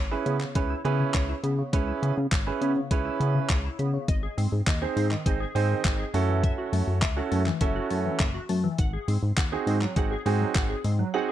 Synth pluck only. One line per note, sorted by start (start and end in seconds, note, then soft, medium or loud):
0.11 0.21 E4 medium
0.26 0.36 B3 medium
0.41 0.50 C#3 medium
0.55 0.65 C#5 medium
0.70 0.80 E4 medium
0.85 0.94 B3 medium
1.00 1.09 C#3 medium
1.14 1.24 C#5 loud
1.29 1.39 E4 medium
1.44 1.53 B3 medium
1.59 1.68 C#3 medium
1.73 1.83 C#5 medium
1.88 1.97 E4 medium
2.02 2.12 B3 medium
2.32 2.41 C#5 medium
2.47 2.56 E4 medium
2.61 2.71 B3 medium
2.76 2.86 C#3 medium
2.91 3.00 C#5 medium
3.05 3.15 E4 medium
3.20 3.30 B3 medium
3.35 3.44 C#3 medium
3.50 3.59 C#5 medium
3.64 3.74 E4 medium
3.79 3.89 B3 medium
3.94 4.03 C#3 medium
4.08 4.18 D#5 medium
4.23 4.33 G#4 medium
4.38 4.47 C4 medium
4.67 4.77 D#5 medium
4.82 4.91 G#4 medium
4.96 5.06 C4 medium
5.11 5.21 D#3 medium
5.26 5.35 D#5 medium
5.40 5.50 G#4 medium
5.55 5.65 C4 medium
5.70 5.79 D#3 medium
5.84 5.94 D#5 medium
5.99 6.09 G#4 medium
6.14 6.24 A3 medium
6.29 6.38 E3 medium
6.43 6.53 E5 loud
6.58 6.68 F#4 medium
6.73 6.82 A3 medium
7.02 7.12 E5 medium
7.17 7.26 F#4 medium
7.31 7.41 A3 medium
7.46 7.56 E3 medium
7.61 7.71 E5 medium
7.76 7.85 F#4 medium
7.90 8.00 A3 medium
8.05 8.15 E3 medium
8.20 8.29 E5 medium
8.34 8.44 F#4 medium
8.49 8.59 A3 medium
8.64 8.73 E3 medium
8.79 8.88 F#5 loud
8.93 9.03 G#4 medium
9.08 9.18 C4 medium
9.38 9.47 F#5 medium
9.52 9.62 G#4 medium
9.67 9.77 C4 medium
9.82 9.91 F#3 medium
9.96 10.06 F#5 medium
10.11 10.21 G#4 loud
10.26 10.35 C4 medium
10.40 10.50 F#3 medium
10.55 10.65 F#5 medium
10.70 10.79 G#4 medium
10.84 10.94 C4 medium
10.99 11.09 F#3 medium
11.14 11.23 F#5 loud
11.29 11.32 G#4 medium